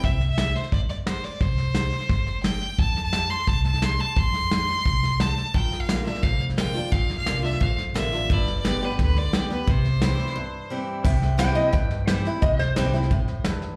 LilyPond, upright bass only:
\new Staff \with { instrumentName = "Upright bass" } { \clef bass \time 4/4 \key c \major \tempo 4 = 174 c,2 g,,2 | c,2 g,,2 | f,2 c,2 | f,2 c,2 |
bes,,2 f,,2 | bes,,4 c,4 bes,,4 a,,4 | g,,2 d,2 | c,2 r2 |
c,2 g,2 | c,4 c,4 d,4 e,4 | }